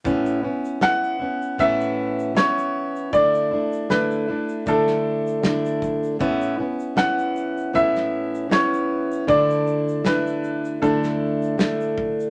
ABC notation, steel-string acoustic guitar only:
X:1
M:4/4
L:1/8
Q:"Swing 16ths" 1/4=78
K:A
V:1 name="Steel-string acoustic guitar"
[A,,E,B,CE] [B,CE] [E,B,CE] [B,CE] [A,,E,B,CE]2 [E,B,CE]2 | [D,A,DE] [A,DE] [D,A,DE] [A,DE] [D,A,DE]2 [D,A,DE]2 | [A,,E,B,CE] [B,CE] [E,B,CE]2 [A,,E,B,CE]2 [E,B,CE]2 | [D,A,DE]2 [D,A,DE]2 [D,A,DE]2 [D,A,DE]2 |]